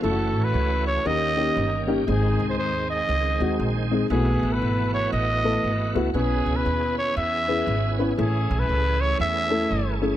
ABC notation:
X:1
M:4/4
L:1/16
Q:"Swing" 1/4=118
K:Bmix
V:1 name="Trumpet"
A3 B3 c2 d6 z2 | G3 ^B B2 d6 z4 | G3 B3 c2 d6 z2 | G3 B3 c2 e6 z2 |
G3 B3 c2 e6 z2 |]
V:2 name="Upright piano"
[A,CE^EF]4 z4 [^A,CD=G]2 [A,CDG]2 z2 [A,CDG]2 | [G,^B,DG]4 z6 [G,B,DF]2 z2 [G,B,DG]2 | [A,B,EF]4 z6 [A,B,EA]2 z2 [A,B,EF]2 | [B,CEG]4 z6 [B,CEG]2 z2 [B,CEB]2 |
[A,CEG]4 z6 [A,CEA]2 z2 [A,CEG]2 |]
V:3 name="Upright piano" clef=bass
z8 D,6 z2 | G,,6 z8 z2 | B,,6 z8 z2 | B,,6 z8 z2 |
A,,6 z8 z2 |]
V:4 name="Tonewheel organ"
[E,A,CF]8 [D,^A,CF=G]8 | [D,G,^B,G]16 | [E,A,B,F]16 | [B,CEFG]16 |
[E,A,CG]16 |]
V:5 name="Upright bass" clef=bass
F,,,2 A,,,2 C,,4 D,,4 =G,,,4 | G,,,2 ^B,,,2 D,,4 C,,2 D,,2 ^A,,,4 | B,,,2 A,,,2 G,,,4 A,,,4 G,,,2 C,,2 | B,,,2 C,,2 D,,4 E,,4 G,,,4 |
A,,,2 B,,,2 C,,4 E,,4 =G,,,4 |]